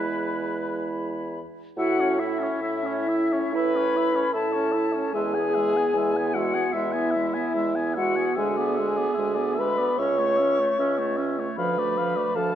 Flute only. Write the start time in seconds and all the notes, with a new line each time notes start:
Already playing: B5
1.77 F#5
2.19 E5
3.55 B5
4.34 A5
5.13 G#5
6.33 F#5
6.72 E5
7.96 F#5
8.37 G#5
9.59 B5
9.98 C#6
11.56 B5
12.35 A5